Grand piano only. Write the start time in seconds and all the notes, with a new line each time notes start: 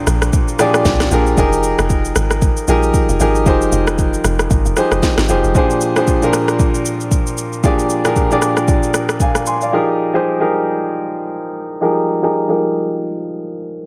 Already playing: A#2 F3 D4 G4 G#4 A4 A#4 C5
0.59 A#2 F3 D4 G4 G#4 D5
1.11 A#2 F3 D4 G4 G#4 A#4
1.37 F3 D#4 G4 G#4 A#4
2.68 F3 D#4 G4 G#4 A#4
3.20 F3 D#4 G4 G#4 A#4
3.46 F3 D#4 G4 G#4 C5
4.76 F3 D#4 G4 G#4 C5
5.29 F3 D#4 G4 G#4 C5
5.55 A#2 F3 D4 G4 G#4 C5
5.96 A#2 F3 D4 G4 G#4 C5
6.22 A#2 F3 D4 G4 G#4 A#4
7.63 A#2 F3 D4 G4 G#4 D5
8.05 A#2 F3 D4 G4 G#4 A#4
8.31 A#2 F3 D4 G4 G#4 D5
9.21 F5 G#5
9.47 G#5 C6
9.62 D5 F5
9.72 F3 D#4 G4 G#4 A#4
10.13 F3 D#4 G4 G#4 C5
10.40 F3 D#4 G4 G#4 A#4
11.81 F3 D#4 G4 G#4 A#4
12.22 F3 D#4 G4 G#4 A#4
12.48 F3 D#4 G4 G#4 A#4